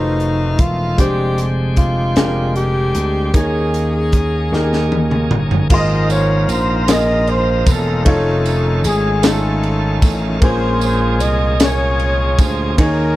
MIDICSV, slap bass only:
0, 0, Header, 1, 2, 480
1, 0, Start_track
1, 0, Key_signature, -4, "major"
1, 0, Tempo, 786370
1, 605, Time_signature, 6, 3, 24, 8
1, 8033, End_track
2, 0, Start_track
2, 0, Title_t, "Slap bass"
2, 0, Program_c, 0, 36
2, 0, Note_on_c, 0, 29, 69
2, 337, Note_off_c, 0, 29, 0
2, 358, Note_on_c, 0, 28, 81
2, 582, Note_off_c, 0, 28, 0
2, 599, Note_on_c, 0, 29, 84
2, 1297, Note_off_c, 0, 29, 0
2, 1323, Note_on_c, 0, 29, 86
2, 1779, Note_off_c, 0, 29, 0
2, 1801, Note_on_c, 0, 38, 87
2, 2023, Note_off_c, 0, 38, 0
2, 2040, Note_on_c, 0, 39, 78
2, 2737, Note_off_c, 0, 39, 0
2, 2759, Note_on_c, 0, 39, 75
2, 3216, Note_off_c, 0, 39, 0
2, 3237, Note_on_c, 0, 31, 80
2, 3460, Note_off_c, 0, 31, 0
2, 3483, Note_on_c, 0, 32, 85
2, 3938, Note_off_c, 0, 32, 0
2, 3958, Note_on_c, 0, 34, 87
2, 4655, Note_off_c, 0, 34, 0
2, 4680, Note_on_c, 0, 28, 88
2, 4901, Note_off_c, 0, 28, 0
2, 4921, Note_on_c, 0, 29, 93
2, 5376, Note_off_c, 0, 29, 0
2, 5402, Note_on_c, 0, 32, 80
2, 6097, Note_off_c, 0, 32, 0
2, 6117, Note_on_c, 0, 33, 95
2, 6339, Note_off_c, 0, 33, 0
2, 6359, Note_on_c, 0, 34, 104
2, 6838, Note_off_c, 0, 34, 0
2, 6838, Note_on_c, 0, 36, 81
2, 7536, Note_off_c, 0, 36, 0
2, 7560, Note_on_c, 0, 38, 105
2, 7782, Note_off_c, 0, 38, 0
2, 7803, Note_on_c, 0, 39, 92
2, 8033, Note_off_c, 0, 39, 0
2, 8033, End_track
0, 0, End_of_file